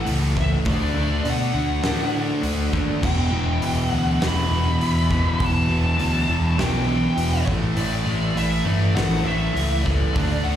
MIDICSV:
0, 0, Header, 1, 6, 480
1, 0, Start_track
1, 0, Tempo, 593472
1, 539, Time_signature, 4, 2, 24, 8
1, 8542, End_track
2, 0, Start_track
2, 0, Title_t, "Lead electric guitar"
2, 0, Program_c, 0, 29
2, 329, Note_on_c, 0, 76, 83
2, 390, Note_off_c, 0, 76, 0
2, 578, Note_on_c, 0, 74, 97
2, 1048, Note_on_c, 0, 78, 100
2, 1051, Note_off_c, 0, 74, 0
2, 1718, Note_off_c, 0, 78, 0
2, 2467, Note_on_c, 0, 79, 100
2, 3114, Note_off_c, 0, 79, 0
2, 3114, Note_on_c, 0, 78, 100
2, 3447, Note_off_c, 0, 78, 0
2, 3456, Note_on_c, 0, 83, 105
2, 4407, Note_on_c, 0, 81, 105
2, 4421, Note_off_c, 0, 83, 0
2, 5316, Note_off_c, 0, 81, 0
2, 5343, Note_on_c, 0, 79, 80
2, 6025, Note_off_c, 0, 79, 0
2, 6290, Note_on_c, 0, 74, 105
2, 6771, Note_off_c, 0, 74, 0
2, 6774, Note_on_c, 0, 76, 97
2, 7006, Note_off_c, 0, 76, 0
2, 7009, Note_on_c, 0, 74, 88
2, 7235, Note_off_c, 0, 74, 0
2, 7238, Note_on_c, 0, 78, 117
2, 7479, Note_on_c, 0, 76, 101
2, 7494, Note_off_c, 0, 78, 0
2, 7944, Note_off_c, 0, 76, 0
2, 7948, Note_on_c, 0, 74, 95
2, 8439, Note_on_c, 0, 78, 106
2, 8459, Note_off_c, 0, 74, 0
2, 8542, Note_off_c, 0, 78, 0
2, 8542, End_track
3, 0, Start_track
3, 0, Title_t, "Distorted electric guitar"
3, 0, Program_c, 1, 30
3, 45, Note_on_c, 1, 45, 97
3, 47, Note_on_c, 1, 52, 87
3, 50, Note_on_c, 1, 57, 95
3, 281, Note_off_c, 1, 45, 0
3, 282, Note_off_c, 1, 52, 0
3, 287, Note_off_c, 1, 57, 0
3, 291, Note_on_c, 1, 45, 76
3, 291, Note_on_c, 1, 52, 84
3, 297, Note_on_c, 1, 57, 85
3, 520, Note_off_c, 1, 45, 0
3, 520, Note_off_c, 1, 52, 0
3, 523, Note_off_c, 1, 57, 0
3, 532, Note_on_c, 1, 50, 101
3, 534, Note_on_c, 1, 57, 96
3, 536, Note_on_c, 1, 62, 105
3, 760, Note_off_c, 1, 50, 0
3, 766, Note_off_c, 1, 57, 0
3, 768, Note_off_c, 1, 62, 0
3, 769, Note_on_c, 1, 50, 83
3, 775, Note_on_c, 1, 57, 84
3, 778, Note_on_c, 1, 62, 99
3, 999, Note_off_c, 1, 50, 0
3, 1003, Note_off_c, 1, 57, 0
3, 1006, Note_off_c, 1, 62, 0
3, 1009, Note_on_c, 1, 50, 83
3, 1012, Note_on_c, 1, 57, 88
3, 1015, Note_on_c, 1, 62, 93
3, 1242, Note_off_c, 1, 50, 0
3, 1247, Note_off_c, 1, 62, 0
3, 1249, Note_off_c, 1, 57, 0
3, 1251, Note_on_c, 1, 50, 100
3, 1257, Note_on_c, 1, 62, 88
3, 1258, Note_on_c, 1, 57, 97
3, 1472, Note_off_c, 1, 50, 0
3, 1473, Note_off_c, 1, 57, 0
3, 1480, Note_off_c, 1, 62, 0
3, 1482, Note_on_c, 1, 50, 84
3, 1483, Note_on_c, 1, 57, 94
3, 1490, Note_on_c, 1, 62, 112
3, 1718, Note_off_c, 1, 50, 0
3, 1718, Note_off_c, 1, 57, 0
3, 1727, Note_off_c, 1, 62, 0
3, 1728, Note_on_c, 1, 50, 84
3, 1728, Note_on_c, 1, 57, 81
3, 1736, Note_on_c, 1, 62, 87
3, 1945, Note_off_c, 1, 50, 0
3, 1947, Note_off_c, 1, 57, 0
3, 1953, Note_off_c, 1, 62, 0
3, 1955, Note_on_c, 1, 50, 76
3, 1957, Note_on_c, 1, 57, 89
3, 1963, Note_on_c, 1, 62, 90
3, 2183, Note_off_c, 1, 50, 0
3, 2186, Note_off_c, 1, 57, 0
3, 2190, Note_off_c, 1, 62, 0
3, 2193, Note_on_c, 1, 50, 82
3, 2196, Note_on_c, 1, 57, 90
3, 2200, Note_on_c, 1, 62, 86
3, 2429, Note_off_c, 1, 50, 0
3, 2430, Note_off_c, 1, 57, 0
3, 2432, Note_off_c, 1, 62, 0
3, 2432, Note_on_c, 1, 40, 96
3, 2437, Note_on_c, 1, 47, 104
3, 2438, Note_on_c, 1, 52, 108
3, 2673, Note_off_c, 1, 40, 0
3, 2676, Note_off_c, 1, 47, 0
3, 2676, Note_on_c, 1, 40, 83
3, 2682, Note_off_c, 1, 52, 0
3, 2685, Note_on_c, 1, 47, 81
3, 2685, Note_on_c, 1, 52, 88
3, 2917, Note_off_c, 1, 47, 0
3, 2922, Note_off_c, 1, 40, 0
3, 2925, Note_on_c, 1, 40, 86
3, 2927, Note_on_c, 1, 47, 90
3, 2928, Note_off_c, 1, 52, 0
3, 2931, Note_on_c, 1, 52, 90
3, 3159, Note_off_c, 1, 40, 0
3, 3165, Note_off_c, 1, 47, 0
3, 3169, Note_on_c, 1, 40, 96
3, 3171, Note_off_c, 1, 52, 0
3, 3174, Note_on_c, 1, 52, 99
3, 3175, Note_on_c, 1, 47, 88
3, 3390, Note_off_c, 1, 40, 0
3, 3398, Note_off_c, 1, 47, 0
3, 3400, Note_on_c, 1, 40, 89
3, 3403, Note_off_c, 1, 52, 0
3, 3406, Note_on_c, 1, 52, 100
3, 3408, Note_on_c, 1, 47, 110
3, 3635, Note_off_c, 1, 40, 0
3, 3635, Note_off_c, 1, 47, 0
3, 3643, Note_off_c, 1, 52, 0
3, 3645, Note_on_c, 1, 40, 84
3, 3645, Note_on_c, 1, 47, 96
3, 3647, Note_on_c, 1, 52, 100
3, 3882, Note_off_c, 1, 40, 0
3, 3884, Note_off_c, 1, 47, 0
3, 3892, Note_on_c, 1, 40, 87
3, 3893, Note_on_c, 1, 47, 90
3, 3897, Note_off_c, 1, 52, 0
3, 3900, Note_on_c, 1, 52, 106
3, 4119, Note_off_c, 1, 40, 0
3, 4125, Note_off_c, 1, 47, 0
3, 4129, Note_on_c, 1, 40, 86
3, 4132, Note_off_c, 1, 52, 0
3, 4135, Note_on_c, 1, 47, 88
3, 4135, Note_on_c, 1, 52, 97
3, 4356, Note_off_c, 1, 40, 0
3, 4360, Note_off_c, 1, 47, 0
3, 4366, Note_on_c, 1, 40, 98
3, 4368, Note_off_c, 1, 52, 0
3, 4370, Note_on_c, 1, 47, 105
3, 4371, Note_on_c, 1, 52, 109
3, 4587, Note_off_c, 1, 40, 0
3, 4594, Note_off_c, 1, 47, 0
3, 4596, Note_on_c, 1, 40, 81
3, 4602, Note_off_c, 1, 52, 0
3, 4604, Note_on_c, 1, 47, 92
3, 4606, Note_on_c, 1, 52, 79
3, 4823, Note_off_c, 1, 40, 0
3, 4825, Note_off_c, 1, 47, 0
3, 4832, Note_on_c, 1, 40, 91
3, 4835, Note_off_c, 1, 52, 0
3, 4835, Note_on_c, 1, 47, 91
3, 4838, Note_on_c, 1, 52, 96
3, 5059, Note_off_c, 1, 40, 0
3, 5067, Note_off_c, 1, 47, 0
3, 5069, Note_on_c, 1, 40, 101
3, 5075, Note_off_c, 1, 52, 0
3, 5077, Note_on_c, 1, 47, 101
3, 5078, Note_on_c, 1, 52, 107
3, 5296, Note_off_c, 1, 40, 0
3, 5302, Note_off_c, 1, 47, 0
3, 5304, Note_off_c, 1, 52, 0
3, 5306, Note_on_c, 1, 40, 102
3, 5312, Note_on_c, 1, 47, 108
3, 5313, Note_on_c, 1, 52, 97
3, 5539, Note_off_c, 1, 40, 0
3, 5540, Note_off_c, 1, 47, 0
3, 5542, Note_off_c, 1, 52, 0
3, 5548, Note_on_c, 1, 40, 89
3, 5550, Note_on_c, 1, 47, 79
3, 5552, Note_on_c, 1, 52, 90
3, 5780, Note_off_c, 1, 40, 0
3, 5782, Note_off_c, 1, 47, 0
3, 5782, Note_off_c, 1, 52, 0
3, 5789, Note_on_c, 1, 40, 92
3, 5791, Note_on_c, 1, 47, 85
3, 5792, Note_on_c, 1, 52, 97
3, 6021, Note_off_c, 1, 47, 0
3, 6022, Note_off_c, 1, 52, 0
3, 6024, Note_on_c, 1, 45, 98
3, 6026, Note_off_c, 1, 40, 0
3, 6032, Note_on_c, 1, 52, 108
3, 6034, Note_on_c, 1, 57, 97
3, 6257, Note_off_c, 1, 45, 0
3, 6258, Note_off_c, 1, 52, 0
3, 6263, Note_off_c, 1, 57, 0
3, 6266, Note_on_c, 1, 45, 94
3, 6268, Note_on_c, 1, 52, 115
3, 6272, Note_on_c, 1, 57, 108
3, 6501, Note_off_c, 1, 45, 0
3, 6503, Note_off_c, 1, 52, 0
3, 6505, Note_off_c, 1, 57, 0
3, 6511, Note_on_c, 1, 45, 89
3, 6512, Note_on_c, 1, 52, 87
3, 6515, Note_on_c, 1, 57, 99
3, 6741, Note_off_c, 1, 45, 0
3, 6743, Note_off_c, 1, 52, 0
3, 6749, Note_off_c, 1, 57, 0
3, 6751, Note_on_c, 1, 45, 98
3, 6753, Note_on_c, 1, 52, 89
3, 6759, Note_on_c, 1, 57, 97
3, 6978, Note_off_c, 1, 45, 0
3, 6982, Note_off_c, 1, 52, 0
3, 6988, Note_on_c, 1, 45, 99
3, 6989, Note_off_c, 1, 57, 0
3, 6991, Note_on_c, 1, 52, 96
3, 6998, Note_on_c, 1, 57, 93
3, 7234, Note_off_c, 1, 45, 0
3, 7238, Note_off_c, 1, 52, 0
3, 7243, Note_off_c, 1, 57, 0
3, 7244, Note_on_c, 1, 45, 96
3, 7248, Note_on_c, 1, 52, 94
3, 7253, Note_on_c, 1, 57, 100
3, 7464, Note_off_c, 1, 45, 0
3, 7470, Note_off_c, 1, 52, 0
3, 7474, Note_on_c, 1, 45, 84
3, 7477, Note_off_c, 1, 57, 0
3, 7480, Note_on_c, 1, 52, 89
3, 7486, Note_on_c, 1, 57, 96
3, 7702, Note_off_c, 1, 45, 0
3, 7709, Note_off_c, 1, 52, 0
3, 7711, Note_off_c, 1, 57, 0
3, 7711, Note_on_c, 1, 45, 81
3, 7718, Note_on_c, 1, 52, 89
3, 7721, Note_on_c, 1, 57, 98
3, 7952, Note_off_c, 1, 45, 0
3, 7955, Note_off_c, 1, 52, 0
3, 7958, Note_off_c, 1, 57, 0
3, 7962, Note_on_c, 1, 45, 76
3, 7964, Note_on_c, 1, 52, 91
3, 7967, Note_on_c, 1, 57, 86
3, 8190, Note_off_c, 1, 57, 0
3, 8195, Note_off_c, 1, 45, 0
3, 8197, Note_off_c, 1, 52, 0
3, 8199, Note_on_c, 1, 50, 106
3, 8200, Note_on_c, 1, 57, 107
3, 8203, Note_on_c, 1, 62, 112
3, 8434, Note_off_c, 1, 50, 0
3, 8434, Note_off_c, 1, 57, 0
3, 8441, Note_off_c, 1, 62, 0
3, 8444, Note_on_c, 1, 50, 85
3, 8444, Note_on_c, 1, 57, 88
3, 8451, Note_on_c, 1, 62, 101
3, 8542, Note_off_c, 1, 50, 0
3, 8542, Note_off_c, 1, 57, 0
3, 8542, Note_off_c, 1, 62, 0
3, 8542, End_track
4, 0, Start_track
4, 0, Title_t, "Distorted electric guitar"
4, 0, Program_c, 2, 30
4, 0, Note_on_c, 2, 45, 73
4, 0, Note_on_c, 2, 52, 84
4, 0, Note_on_c, 2, 57, 96
4, 277, Note_off_c, 2, 57, 0
4, 287, Note_off_c, 2, 52, 0
4, 296, Note_off_c, 2, 45, 0
4, 2473, Note_on_c, 2, 52, 108
4, 3430, Note_off_c, 2, 52, 0
4, 6075, Note_on_c, 2, 57, 110
4, 6986, Note_off_c, 2, 57, 0
4, 7027, Note_on_c, 2, 45, 73
4, 7968, Note_off_c, 2, 45, 0
4, 8542, End_track
5, 0, Start_track
5, 0, Title_t, "Picked electric bass"
5, 0, Program_c, 3, 34
5, 61, Note_on_c, 3, 37, 85
5, 422, Note_off_c, 3, 37, 0
5, 538, Note_on_c, 3, 38, 95
5, 719, Note_off_c, 3, 38, 0
5, 779, Note_on_c, 3, 38, 89
5, 959, Note_off_c, 3, 38, 0
5, 1014, Note_on_c, 3, 47, 86
5, 1196, Note_off_c, 3, 47, 0
5, 1252, Note_on_c, 3, 38, 93
5, 1434, Note_off_c, 3, 38, 0
5, 1498, Note_on_c, 3, 45, 112
5, 1859, Note_off_c, 3, 45, 0
5, 1969, Note_on_c, 3, 38, 80
5, 2152, Note_off_c, 3, 38, 0
5, 2211, Note_on_c, 3, 39, 94
5, 2393, Note_off_c, 3, 39, 0
5, 2458, Note_on_c, 3, 28, 89
5, 2637, Note_off_c, 3, 28, 0
5, 2701, Note_on_c, 3, 28, 96
5, 2879, Note_off_c, 3, 28, 0
5, 2931, Note_on_c, 3, 28, 96
5, 3113, Note_off_c, 3, 28, 0
5, 3171, Note_on_c, 3, 38, 90
5, 3353, Note_off_c, 3, 38, 0
5, 3408, Note_on_c, 3, 28, 102
5, 3590, Note_off_c, 3, 28, 0
5, 3652, Note_on_c, 3, 28, 83
5, 3833, Note_off_c, 3, 28, 0
5, 3903, Note_on_c, 3, 40, 89
5, 4261, Note_off_c, 3, 40, 0
5, 4371, Note_on_c, 3, 28, 94
5, 4552, Note_off_c, 3, 28, 0
5, 4609, Note_on_c, 3, 28, 89
5, 4791, Note_off_c, 3, 28, 0
5, 4844, Note_on_c, 3, 38, 96
5, 5028, Note_off_c, 3, 38, 0
5, 5089, Note_on_c, 3, 28, 91
5, 5271, Note_off_c, 3, 28, 0
5, 5324, Note_on_c, 3, 35, 113
5, 5689, Note_off_c, 3, 35, 0
5, 5805, Note_on_c, 3, 28, 88
5, 5989, Note_off_c, 3, 28, 0
5, 6047, Note_on_c, 3, 33, 96
5, 6230, Note_off_c, 3, 33, 0
5, 6287, Note_on_c, 3, 33, 96
5, 6470, Note_off_c, 3, 33, 0
5, 6528, Note_on_c, 3, 33, 96
5, 6711, Note_off_c, 3, 33, 0
5, 6762, Note_on_c, 3, 33, 105
5, 6948, Note_off_c, 3, 33, 0
5, 7000, Note_on_c, 3, 31, 89
5, 7187, Note_off_c, 3, 31, 0
5, 7254, Note_on_c, 3, 33, 109
5, 7435, Note_off_c, 3, 33, 0
5, 7484, Note_on_c, 3, 33, 89
5, 7670, Note_off_c, 3, 33, 0
5, 7724, Note_on_c, 3, 37, 89
5, 8092, Note_off_c, 3, 37, 0
5, 8219, Note_on_c, 3, 38, 95
5, 8400, Note_off_c, 3, 38, 0
5, 8460, Note_on_c, 3, 38, 94
5, 8542, Note_off_c, 3, 38, 0
5, 8542, End_track
6, 0, Start_track
6, 0, Title_t, "Drums"
6, 53, Note_on_c, 9, 46, 62
6, 134, Note_off_c, 9, 46, 0
6, 297, Note_on_c, 9, 36, 75
6, 298, Note_on_c, 9, 38, 31
6, 378, Note_off_c, 9, 36, 0
6, 379, Note_off_c, 9, 38, 0
6, 526, Note_on_c, 9, 46, 65
6, 534, Note_on_c, 9, 36, 116
6, 607, Note_off_c, 9, 46, 0
6, 615, Note_off_c, 9, 36, 0
6, 1012, Note_on_c, 9, 46, 62
6, 1093, Note_off_c, 9, 46, 0
6, 1483, Note_on_c, 9, 46, 66
6, 1485, Note_on_c, 9, 38, 105
6, 1564, Note_off_c, 9, 46, 0
6, 1566, Note_off_c, 9, 38, 0
6, 1967, Note_on_c, 9, 46, 66
6, 2048, Note_off_c, 9, 46, 0
6, 2210, Note_on_c, 9, 38, 34
6, 2211, Note_on_c, 9, 36, 80
6, 2291, Note_off_c, 9, 38, 0
6, 2292, Note_off_c, 9, 36, 0
6, 2451, Note_on_c, 9, 49, 98
6, 2452, Note_on_c, 9, 36, 112
6, 2532, Note_off_c, 9, 49, 0
6, 2533, Note_off_c, 9, 36, 0
6, 2928, Note_on_c, 9, 46, 69
6, 3009, Note_off_c, 9, 46, 0
6, 3411, Note_on_c, 9, 46, 66
6, 3414, Note_on_c, 9, 38, 110
6, 3492, Note_off_c, 9, 46, 0
6, 3495, Note_off_c, 9, 38, 0
6, 3891, Note_on_c, 9, 46, 57
6, 3972, Note_off_c, 9, 46, 0
6, 4130, Note_on_c, 9, 36, 77
6, 4130, Note_on_c, 9, 38, 33
6, 4211, Note_off_c, 9, 36, 0
6, 4211, Note_off_c, 9, 38, 0
6, 4368, Note_on_c, 9, 46, 60
6, 4370, Note_on_c, 9, 36, 113
6, 4449, Note_off_c, 9, 46, 0
6, 4451, Note_off_c, 9, 36, 0
6, 4848, Note_on_c, 9, 46, 62
6, 4928, Note_off_c, 9, 46, 0
6, 5329, Note_on_c, 9, 46, 58
6, 5332, Note_on_c, 9, 38, 109
6, 5410, Note_off_c, 9, 46, 0
6, 5413, Note_off_c, 9, 38, 0
6, 5804, Note_on_c, 9, 46, 68
6, 5885, Note_off_c, 9, 46, 0
6, 6046, Note_on_c, 9, 36, 95
6, 6048, Note_on_c, 9, 38, 29
6, 6127, Note_off_c, 9, 36, 0
6, 6129, Note_off_c, 9, 38, 0
6, 6281, Note_on_c, 9, 46, 66
6, 6362, Note_off_c, 9, 46, 0
6, 6771, Note_on_c, 9, 46, 69
6, 6852, Note_off_c, 9, 46, 0
6, 7252, Note_on_c, 9, 46, 64
6, 7254, Note_on_c, 9, 38, 109
6, 7332, Note_off_c, 9, 46, 0
6, 7335, Note_off_c, 9, 38, 0
6, 7736, Note_on_c, 9, 46, 62
6, 7817, Note_off_c, 9, 46, 0
6, 7975, Note_on_c, 9, 36, 73
6, 7976, Note_on_c, 9, 38, 32
6, 8056, Note_off_c, 9, 36, 0
6, 8057, Note_off_c, 9, 38, 0
6, 8216, Note_on_c, 9, 36, 116
6, 8218, Note_on_c, 9, 46, 69
6, 8297, Note_off_c, 9, 36, 0
6, 8299, Note_off_c, 9, 46, 0
6, 8542, End_track
0, 0, End_of_file